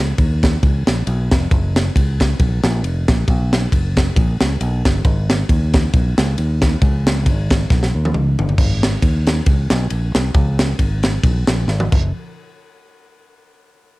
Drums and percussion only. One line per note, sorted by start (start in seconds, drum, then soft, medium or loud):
0.18 kick loud
0.18 ride medium
0.43 kick medium
0.43 snare loud
0.43 ride medium
0.63 kick loud
0.63 ride medium
0.87 snare loud
0.87 ride medium
1.07 ride medium
1.31 kick loud
1.31 snare loud
1.31 ride medium
1.51 kick loud
1.51 ride medium
1.76 snare loud
1.76 ride medium
1.96 kick medium
1.96 ride medium
2.20 kick medium
2.20 snare loud
2.20 ride medium
2.40 kick loud
2.40 ride medium
2.64 snare loud
2.64 ride medium
2.84 ride medium
3.08 kick medium
3.08 snare loud
3.08 ride medium
3.28 kick loud
3.28 ride medium
3.53 snare loud
3.53 ride medium
3.72 kick medium
3.72 ride medium
3.97 kick medium
3.97 snare loud
3.97 ride medium
4.16 kick loud
4.16 ride medium
4.41 snare loud
4.41 ride medium
4.61 ride medium
4.85 kick medium
4.85 snare loud
4.85 ride medium
5.05 kick loud
5.05 ride medium
5.30 snare loud
5.30 ride medium
5.49 kick medium
5.49 ride medium
5.73 kick loud
5.73 snare loud
5.73 ride medium
5.93 kick loud
5.93 ride medium
6.18 snare loud
6.18 ride medium
6.38 ride medium
6.62 kick medium
6.62 snare loud
6.62 ride medium
6.82 kick loud
6.82 ride medium
7.07 snare loud
7.07 ride medium
7.26 kick medium
7.26 ride medium
7.50 kick medium
7.50 snare loud
7.50 ride medium
7.70 kick loud
7.70 snare medium
7.83 snare medium
8.05 high tom medium
8.14 mid tom medium
8.39 floor tom loud
8.49 floor tom medium
8.58 kick loud
8.58 crash loud
8.83 snare loud
8.83 ride medium
9.02 kick medium
9.02 ride medium
9.27 snare loud
9.27 ride medium
9.46 kick loud
9.46 ride medium
9.70 snare loud
9.70 ride soft
9.90 ride medium
10.15 snare loud
10.15 ride medium
10.34 kick loud
10.34 ride medium
10.59 snare loud
10.59 ride medium
10.79 kick medium
10.79 ride medium
11.03 snare loud
11.03 ride medium
11.23 kick loud
11.23 ride medium
11.47 snare loud
11.47 ride medium
11.68 snare medium
11.80 high tom medium
11.92 kick loud
11.92 crash medium